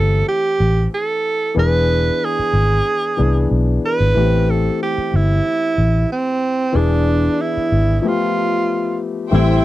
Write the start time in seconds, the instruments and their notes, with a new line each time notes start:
Already playing: fingered electric bass G1, grand piano E3 A3 C4 G4, tenor saxophone A4
0.28 tenor saxophone G4
0.60 fingered electric bass A1
0.94 tenor saxophone A4
1.54 fingered electric bass E1, grand piano E3 B3 D4 G#4
1.59 tenor saxophone B4
2.25 tenor saxophone G#4
2.39 muted fingered electric bass stroke
2.53 fingered electric bass G#1
3.17 fingered electric bass C2, grand piano E3 B3 D4 G#4
3.51 fingered electric bass B1
3.86 tenor saxophone B4
4.00 fingered electric bass G#1
4.14 fingered electric bass A1, grand piano E3 A3 B3 G4
4.23 grand piano C4
4.50 tenor saxophone A4
4.83 tenor saxophone G4
4.98 muted fingered electric bass stroke
5.14 fingered electric bass G1, tenor saxophone E4
5.78 fingered electric bass A1
6.12 tenor saxophone C4
6.72 fingered electric bass E1, grand piano E3 B3 D4 G#4, tenor saxophone D4
7.41 tenor saxophone E4
7.57 muted fingered electric bass stroke
7.72 fingered electric bass G#1
8.00 grand piano F3 A3, tenor saxophone E4
8.04 grand piano B3 G4, tenor saxophone F4
9.31 fingered electric bass A1, grand piano E3 G3 A3 C4, tonewheel organ A4 G5 C6 E6, string section C5 E5 G5
9.35 tenor saxophone E4, grand piano G4